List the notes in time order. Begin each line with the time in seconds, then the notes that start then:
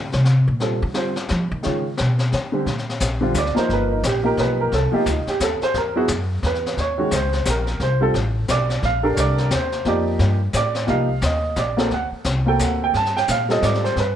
Already playing: D3
0.12 C3, snare
0.25 snare
0.48 A#2
0.60 G3 C4 F4 A4, brush sweep, snare
0.82 D3
0.94 G3 C4 F4 C5, snare
1.16 snare
1.29 F3, snare
1.51 D#3
1.63 C#3 D#3 G#3 C#4 F4, brush sweep, snare
1.97 B2, snare
2.19 snare
2.32 D#3, snare
2.52 D3 G3 C4 G4
2.66 A#2, brush sweep, kick, snare
2.78 snare
2.89 snare
3.00 A#1, kick, snare, hi-hat pedal
3.21 D3 G3 C4 F4
3.34 D2, kick, snare, hi-hat pedal
3.38 D5
3.46 snare
3.55 F3 A#3 D#4 A#4 C5, muted upright bass stroke, snare
3.69 G1, brush sweep, kick, snare
3.73 B4
3.92 D#4
4.03 A#1 G4, kick, snare, hi-hat pedal
4.23 F3 A#3 D#4 G4 A#4
4.37 B1 B4, kick, snare
4.61 A#4
4.72 C2 A4, brush sweep, kick, snare
4.92 F3 A#3 D#4 F4 G4, muted upright bass stroke
5.06 D2 D#4, kick, snare, hi-hat pedal
5.27 G4, muted upright bass stroke, snare
5.40 D#2 A4, kick, snare, hi-hat pedal
5.61 C5, muted upright bass stroke, snare
5.74 E2 A#4, brush sweep, kick, snare
5.96 F#3 B3 E4 F#4 G#4
6.08 F#2, kick, snare, hi-hat pedal
6.43 E2 B4, kick, snare
6.55 snare
6.66 snare
6.77 D#2 C#5, brush sweep, kick, snare
6.98 D#3 G#3 C#4 F#4
7.11 C#2, kick, snare, hi-hat pedal
7.15 C5
7.33 snare
7.45 A#1, kick, snare, hi-hat pedal
7.50 A#4
7.67 snare
7.80 C2 C5, brush sweep, kick, snare
8.01 G3 C4 F4 A4
8.14 A1, kick, snare
8.48 B1 D5, kick, snare, hi-hat pedal
8.70 snare
8.83 A#1 F5, brush sweep, kick, snare
9.03 D4 G4 A4 A#4
9.15 C2 C#5, kick, snare, hi-hat pedal
9.20 D5
9.38 snare
9.50 D#2 C5, kick, snare, hi-hat pedal
9.72 snare
9.85 F2 F3 A#3 D#4 G4 D5, brush sweep, kick, snare
10.19 G2, kick, snare
10.53 A2 D5, kick, snare, hi-hat pedal
10.74 snare
10.87 C2 F3 A#3 D#4 G4 F5, brush sweep, kick, snare
11.21 D#2 D#5, kick, snare, hi-hat pedal
11.56 A#1 D5, kick, snare, hi-hat pedal
11.77 A#3 C4 F#4 A4, snare
11.91 D2 F#5, brush sweep, kick, snare
12.11 muted upright bass stroke
12.24 C2, kick, snare, hi-hat pedal
12.46 A#3 C4 F#4 A4 G5
12.59 D2 F#5, kick, snare, hi-hat pedal
12.84 G5
12.94 G2 A5, brush sweep, kick, snare
13.05 snare
13.17 G5, snare
13.28 A#2 F5, kick, snare, hi-hat pedal
13.49 G3 C4 F4 A4 D#5, snare
13.62 G#2 D5, kick, snare, hi-hat pedal
13.74 snare
13.84 C5, snare
13.96 G2 B4, brush sweep, kick, snare